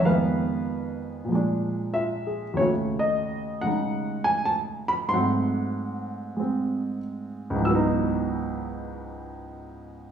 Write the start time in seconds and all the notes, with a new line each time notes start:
0.00 F2 D#3
0.05 G#3 B4 F5
0.10 B3
1.25 A#2
1.29 F3 G#3
1.35 D4
1.94 F4 E5
2.27 G#4
2.53 D#2 C#3 C#5
2.60 A3 F#4
2.64 F#4
2.99 D#5
3.61 C#3 G#3 F#5
3.67 D#4
4.24 G#5
4.45 A5
4.88 B5
5.09 G#2 F#3 A3 C6
5.14 C4 F#5
6.36 G#3 C4
7.50 C#2
7.55 G#2
7.60 E3
7.65 F#3 E6
7.70 B3
7.75 D#4